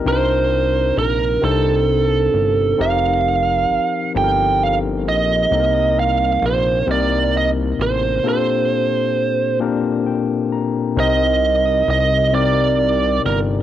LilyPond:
<<
  \new Staff \with { instrumentName = "Lead electric guitar" } { \time 6/8 \key c \dorian \tempo 4. = 44 c''4 bes'8 a'4. | f''4. g''8 f''8 ees''8~ | ees''8 f''8 c''8 d''8 ees''8 c''8 | c''4. r4. |
ees''4 ees''8 d''4 bes'8 | }
  \new Staff \with { instrumentName = "Tine electric piano" } { \time 6/8 \key c \dorian << { f'16 r2 r8. | r2. | r2. | r2 g''8 bes''8 |
r2. | } \\ { <c c' d' ees' bes'>4. <c c' d' ees' c''>4. | <f c' ees' g' bes'>4. <f c' ees' g' a' bes'>4. | <c bes c' ees' a' bes'>4. <c bes c' ees' bes'>4. | <bes, bes c' d' g' a'>4. <bes, bes c' d' g' bes'>4. |
<c c' ees' bes' ees''>4. <c c' ees' bes' d''>4. | } >> }
  \new Staff \with { instrumentName = "Analog synth bass" } { \clef bass \time 6/8 \key c \dorian c,4 bes,,8 c,4 g,,8 | f,,4 g,,8 g,,4 bes,,8 | c,4 bes,,8 c,4 a,,8 | r2. |
c,4 c,4. g,,8 | }
>>